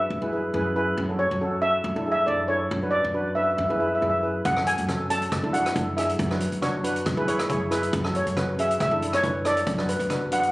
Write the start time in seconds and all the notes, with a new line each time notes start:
Already playing: E5
0.10 F#2
0.21 F#2 E4 G#4 B4
0.33 E4 G#4 B4
0.54 F#2 E4 G#4 B4
0.76 E4 G#4 B4
0.98 F#2
1.09 C#4 F#4 A4
1.19 C#5
1.31 F#2
1.41 C#4 F#4 A4
1.62 C#4 F#4 A4 E5
1.84 F#2
1.95 F#2 D4 E4 A4
2.06 D4 E4 G#4
2.12 E5
2.26 F#2 D4 E4 A4 D5
2.48 D4 E4 A4 C#5
2.71 F#2
2.82 D4 F#4 B4
2.91 D5
3.04 F#2
3.14 D4 F#4 B4
3.35 D4 F#4 B4 E5
3.43 E5
3.50 E5
3.57 F#2 E5
3.65 E5
3.69 F#2 E4 G#4 B4 E5
3.79 E4 G#4 B4 E5
3.87 E5
3.95 E5
4.01 F#2 E4 G#4 B4 E5
4.10 E5
4.23 E4 G#4 B4
4.45 F#2 F#5, kick, closed hi-hat
4.56 C#4 F#4 A4, cross-stick
4.67 G#5, closed hi-hat
4.78 F#2, closed hi-hat
4.88 C#4 F#4 A4, kick, cross-stick, closed hi-hat
5.10 C#4 F#4 A4 A5, closed hi-hat
5.22 closed hi-hat
5.32 F#2, kick, cross-stick, closed hi-hat
5.43 F#2 D4 E4 A4
5.53 D4 E4 F#4 F#5, closed hi-hat
5.66 cross-stick, closed hi-hat
5.75 F#2 D4 E4 A4, kick, closed hi-hat
5.97 D4 E4 G#4 E5, cross-stick, closed hi-hat
6.09 closed hi-hat
6.19 F#2, kick, closed hi-hat
6.31 D4 F#4 B4, cross-stick
6.40 closed hi-hat
6.52 F#2, closed hi-hat
6.62 D4 F#4 C#5, kick, cross-stick, closed hi-hat
6.84 D4 F#4 B4, closed hi-hat
6.96 closed hi-hat
7.06 F#2, kick, cross-stick, closed hi-hat
7.17 F#2 E4 G#4 B4
7.28 E4 G#4 C#5, closed hi-hat
7.39 cross-stick, closed hi-hat
7.50 F#2 E4 G#4 C#5, kick, closed hi-hat
7.71 E4 G#4 B4, cross-stick, closed hi-hat
7.83 closed hi-hat
7.93 F#2, kick, closed hi-hat
8.04 C#4 F#4 A4, cross-stick
8.15 C#5, closed hi-hat
8.27 F#2, closed hi-hat
8.37 C#4 F#4 B4, kick, cross-stick, closed hi-hat
8.58 C#4 F#4 G#4 E5, closed hi-hat
8.71 closed hi-hat
8.80 F#2 E5, kick, cross-stick, closed hi-hat
8.91 F#2 D4 E4 A4
9.01 D4 E4 A4, closed hi-hat
9.13 C#5, cross-stick, closed hi-hat
9.23 F#2 D4 E4 B4, kick, closed hi-hat
9.45 D4 E4 A4 D5, cross-stick, closed hi-hat
9.57 closed hi-hat
9.67 F#2, kick, closed hi-hat
9.78 D4 F#4 B4, cross-stick
9.89 B4, closed hi-hat
9.99 F#2, closed hi-hat
10.09 D4 F#4 B4, kick, cross-stick, closed hi-hat
10.31 D4 F#4 B4 F#5, closed hi-hat
10.40 F#5, closed hi-hat
10.48 F#5